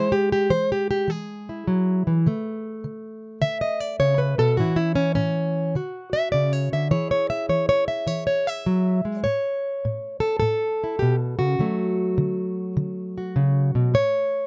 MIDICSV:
0, 0, Header, 1, 2, 480
1, 0, Start_track
1, 0, Key_signature, 3, "major"
1, 0, Tempo, 584226
1, 1848, Time_signature, 4, 2, 24, 8
1, 11887, End_track
2, 0, Start_track
2, 0, Title_t, "Steel-string acoustic guitar"
2, 0, Program_c, 0, 25
2, 0, Note_on_c, 0, 52, 74
2, 0, Note_on_c, 0, 56, 51
2, 0, Note_on_c, 0, 64, 48
2, 0, Note_on_c, 0, 72, 101
2, 96, Note_off_c, 0, 64, 0
2, 97, Note_off_c, 0, 72, 0
2, 99, Note_on_c, 0, 67, 104
2, 257, Note_off_c, 0, 67, 0
2, 266, Note_on_c, 0, 67, 96
2, 386, Note_off_c, 0, 52, 0
2, 412, Note_on_c, 0, 52, 74
2, 414, Note_on_c, 0, 72, 107
2, 420, Note_off_c, 0, 67, 0
2, 573, Note_off_c, 0, 72, 0
2, 591, Note_on_c, 0, 67, 98
2, 735, Note_off_c, 0, 67, 0
2, 744, Note_on_c, 0, 67, 92
2, 860, Note_off_c, 0, 52, 0
2, 885, Note_on_c, 0, 52, 78
2, 898, Note_off_c, 0, 67, 0
2, 903, Note_on_c, 0, 68, 99
2, 1226, Note_on_c, 0, 64, 50
2, 1335, Note_off_c, 0, 52, 0
2, 1373, Note_off_c, 0, 56, 0
2, 1376, Note_on_c, 0, 54, 62
2, 1694, Note_off_c, 0, 54, 0
2, 1701, Note_on_c, 0, 52, 55
2, 1836, Note_off_c, 0, 64, 0
2, 1853, Note_off_c, 0, 52, 0
2, 1860, Note_on_c, 0, 50, 80
2, 1867, Note_on_c, 0, 57, 50
2, 2301, Note_off_c, 0, 50, 0
2, 2331, Note_off_c, 0, 68, 0
2, 2335, Note_on_c, 0, 50, 72
2, 2777, Note_off_c, 0, 50, 0
2, 2807, Note_on_c, 0, 76, 109
2, 2810, Note_on_c, 0, 50, 78
2, 2965, Note_off_c, 0, 76, 0
2, 2968, Note_on_c, 0, 75, 83
2, 3126, Note_off_c, 0, 75, 0
2, 3126, Note_on_c, 0, 74, 86
2, 3254, Note_off_c, 0, 50, 0
2, 3281, Note_off_c, 0, 74, 0
2, 3284, Note_on_c, 0, 73, 103
2, 3288, Note_on_c, 0, 49, 59
2, 3436, Note_on_c, 0, 71, 86
2, 3443, Note_off_c, 0, 73, 0
2, 3598, Note_off_c, 0, 49, 0
2, 3599, Note_off_c, 0, 71, 0
2, 3601, Note_on_c, 0, 47, 66
2, 3606, Note_on_c, 0, 69, 99
2, 3757, Note_on_c, 0, 66, 84
2, 3760, Note_off_c, 0, 47, 0
2, 3764, Note_off_c, 0, 69, 0
2, 3765, Note_on_c, 0, 45, 75
2, 3771, Note_off_c, 0, 57, 0
2, 3772, Note_on_c, 0, 52, 51
2, 3776, Note_on_c, 0, 61, 49
2, 3782, Note_on_c, 0, 64, 54
2, 3904, Note_off_c, 0, 64, 0
2, 3914, Note_on_c, 0, 64, 92
2, 3919, Note_off_c, 0, 66, 0
2, 4061, Note_off_c, 0, 61, 0
2, 4068, Note_off_c, 0, 64, 0
2, 4071, Note_on_c, 0, 61, 105
2, 4211, Note_off_c, 0, 45, 0
2, 4223, Note_off_c, 0, 61, 0
2, 4233, Note_on_c, 0, 61, 108
2, 4244, Note_on_c, 0, 45, 74
2, 4690, Note_off_c, 0, 45, 0
2, 4716, Note_off_c, 0, 61, 0
2, 4725, Note_off_c, 0, 52, 0
2, 4727, Note_on_c, 0, 50, 74
2, 4735, Note_on_c, 0, 66, 55
2, 5038, Note_on_c, 0, 76, 105
2, 5171, Note_off_c, 0, 50, 0
2, 5189, Note_off_c, 0, 76, 0
2, 5192, Note_on_c, 0, 74, 92
2, 5207, Note_on_c, 0, 49, 60
2, 5363, Note_off_c, 0, 74, 0
2, 5363, Note_on_c, 0, 73, 87
2, 5521, Note_off_c, 0, 73, 0
2, 5523, Note_off_c, 0, 49, 0
2, 5526, Note_on_c, 0, 50, 60
2, 5531, Note_on_c, 0, 76, 101
2, 5667, Note_off_c, 0, 66, 0
2, 5676, Note_off_c, 0, 76, 0
2, 5678, Note_on_c, 0, 52, 76
2, 5679, Note_on_c, 0, 73, 102
2, 5681, Note_off_c, 0, 50, 0
2, 5683, Note_on_c, 0, 64, 51
2, 5690, Note_on_c, 0, 68, 55
2, 5832, Note_off_c, 0, 73, 0
2, 5842, Note_on_c, 0, 73, 93
2, 5993, Note_off_c, 0, 73, 0
2, 5997, Note_on_c, 0, 76, 104
2, 6127, Note_off_c, 0, 52, 0
2, 6155, Note_off_c, 0, 76, 0
2, 6155, Note_on_c, 0, 52, 72
2, 6158, Note_on_c, 0, 73, 84
2, 6308, Note_off_c, 0, 73, 0
2, 6318, Note_on_c, 0, 73, 110
2, 6470, Note_off_c, 0, 73, 0
2, 6473, Note_on_c, 0, 76, 88
2, 6606, Note_off_c, 0, 52, 0
2, 6628, Note_on_c, 0, 52, 84
2, 6634, Note_off_c, 0, 76, 0
2, 6634, Note_on_c, 0, 73, 96
2, 6783, Note_off_c, 0, 73, 0
2, 6793, Note_on_c, 0, 73, 102
2, 6961, Note_off_c, 0, 73, 0
2, 6961, Note_on_c, 0, 76, 92
2, 7083, Note_off_c, 0, 52, 0
2, 7119, Note_on_c, 0, 54, 65
2, 7432, Note_off_c, 0, 54, 0
2, 7435, Note_on_c, 0, 56, 64
2, 7583, Note_off_c, 0, 64, 0
2, 7586, Note_off_c, 0, 68, 0
2, 7586, Note_off_c, 0, 76, 0
2, 7589, Note_on_c, 0, 73, 102
2, 7596, Note_off_c, 0, 56, 0
2, 7601, Note_on_c, 0, 45, 67
2, 8050, Note_off_c, 0, 45, 0
2, 8092, Note_on_c, 0, 45, 76
2, 8379, Note_off_c, 0, 73, 0
2, 8383, Note_on_c, 0, 69, 84
2, 8531, Note_off_c, 0, 69, 0
2, 8536, Note_off_c, 0, 45, 0
2, 8541, Note_on_c, 0, 69, 98
2, 8561, Note_on_c, 0, 45, 75
2, 8903, Note_on_c, 0, 64, 48
2, 9011, Note_off_c, 0, 45, 0
2, 9027, Note_off_c, 0, 64, 0
2, 9030, Note_on_c, 0, 67, 78
2, 9056, Note_on_c, 0, 47, 56
2, 9162, Note_off_c, 0, 67, 0
2, 9352, Note_off_c, 0, 69, 0
2, 9355, Note_on_c, 0, 66, 79
2, 9360, Note_off_c, 0, 47, 0
2, 9363, Note_on_c, 0, 49, 55
2, 9521, Note_off_c, 0, 49, 0
2, 9524, Note_on_c, 0, 50, 71
2, 9531, Note_on_c, 0, 54, 47
2, 9536, Note_on_c, 0, 57, 51
2, 9974, Note_off_c, 0, 50, 0
2, 10006, Note_on_c, 0, 50, 77
2, 10456, Note_off_c, 0, 50, 0
2, 10490, Note_on_c, 0, 50, 75
2, 10806, Note_off_c, 0, 66, 0
2, 10825, Note_on_c, 0, 66, 47
2, 10939, Note_off_c, 0, 50, 0
2, 10975, Note_on_c, 0, 49, 62
2, 11295, Note_off_c, 0, 49, 0
2, 11298, Note_on_c, 0, 47, 56
2, 11436, Note_off_c, 0, 54, 0
2, 11440, Note_off_c, 0, 66, 0
2, 11452, Note_on_c, 0, 45, 71
2, 11454, Note_off_c, 0, 47, 0
2, 11460, Note_on_c, 0, 73, 107
2, 11887, Note_off_c, 0, 45, 0
2, 11887, Note_off_c, 0, 57, 0
2, 11887, Note_off_c, 0, 73, 0
2, 11887, End_track
0, 0, End_of_file